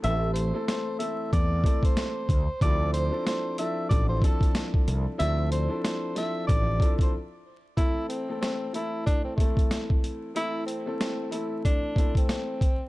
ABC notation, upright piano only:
X:1
M:4/4
L:1/16
Q:"Swing 16ths" 1/4=93
K:Am
V:1 name="Upright piano"
[E,A,CEA]3 [E,A,CEA]3 [E,A,CEA]4 [E,A,CEA]4 z2 | [F,CDEA]3 [F,CDEA]3 [F,CDEA]4 [F,CDEA]6 | [F,CDEA]3 [F,CDEA]3 [F,CDEA]4 [F,CDEA]2 z4 | [E,A,CEA]3 [E,A,CEA]3 [E,A,CEA]4 [E,A,CEA]6 |
[E,A,CEA]3 [E,A,CEA]3 [E,A,CEA]4 [E,A,CEA]4 z2 |]